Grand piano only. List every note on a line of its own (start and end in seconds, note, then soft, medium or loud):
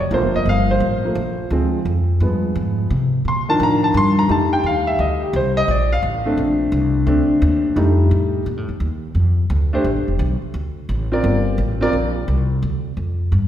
0.00 0.12 C#5 medium
0.11 1.03 F3 medium
0.11 1.04 A3 medium
0.11 1.04 A#3 medium
0.11 0.35 C5 medium
0.36 0.47 D#5 medium
0.49 0.70 F5 medium
0.71 1.48 C5 medium
1.05 1.15 F3 soft
1.05 1.16 A3 soft
1.05 1.16 A#3 medium
1.51 1.77 F3 medium
1.51 1.78 G#3 soft
1.51 1.78 C4 medium
2.21 2.87 F3 soft
2.21 2.87 G#3 soft
2.21 2.88 B3 medium
3.28 3.49 C6 medium
3.49 4.26 D#3 medium
3.49 4.26 F3 medium
3.49 4.26 D4 medium
3.49 4.26 A#4 medium
3.49 3.60 A5 medium
3.63 3.84 A#5 loud
3.84 3.95 A5 medium
3.97 4.18 C6 loud
4.19 4.30 A#5 medium
4.28 5.64 G3 medium
4.28 5.64 A3 medium
4.28 5.65 D#4 medium
4.28 4.52 A5 medium
4.53 4.64 G5 medium
4.66 4.87 F5 medium
4.87 4.99 E5 medium
5.00 5.22 D#5 medium
5.22 5.34 G4 medium
5.36 5.57 C5 medium
5.57 5.68 D#5 loud
5.71 5.92 D5 medium
5.92 5.99 F5 medium
6.26 7.05 A3 medium
6.26 7.05 C4 medium
6.26 7.06 D4 medium
7.06 7.73 A3 medium
7.06 7.73 C4 medium
7.06 7.73 D4 medium
7.76 8.42 G3 medium
7.76 8.42 A3 medium
7.76 8.43 D#4 medium
9.73 9.84 A3 medium
9.73 9.84 D4 medium
9.73 9.84 G4 medium
9.73 9.85 C5 medium
11.12 11.56 C4 medium
11.12 11.56 F4 medium
11.12 11.57 A#4 medium
11.12 11.57 D5 medium
11.81 11.92 C4 medium
11.81 11.92 F4 medium
11.81 11.93 A#4 medium
11.81 11.93 D5 loud